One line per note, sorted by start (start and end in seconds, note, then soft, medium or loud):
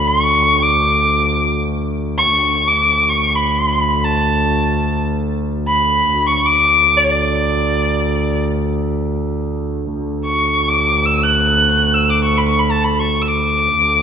0.00 2.33 D2 medium
0.07 0.64 C#6 medium
0.62 1.52 D6 medium
2.18 2.69 C#6 medium
2.34 6.12 D2 medium
2.68 3.10 D6 medium
3.08 3.37 C#6 medium
3.35 4.06 B5 medium
4.05 4.99 A5 medium
5.68 6.28 B5 medium
6.13 9.94 D2 medium
6.26 6.47 C#6 medium
6.45 6.99 D6 medium
6.97 7.05 D5 medium
7.04 7.12 C#5 medium
7.10 8.39 D5 medium
9.95 13.76 D2 medium
10.25 10.70 C#6 medium
10.68 11.07 D6 medium
11.05 11.25 E6 medium
11.24 11.95 F#6 medium
11.94 12.11 E6 medium
12.10 12.23 D6 medium
12.24 12.39 C#6 medium
12.37 12.48 B5 medium
12.48 12.61 C#6 medium
12.59 12.73 B5 medium
12.71 12.86 A5 medium
12.84 13.01 B5 medium
12.99 13.23 C#6 medium
13.22 13.29 E6 medium
13.28 14.02 D6 medium
13.77 14.02 D2 medium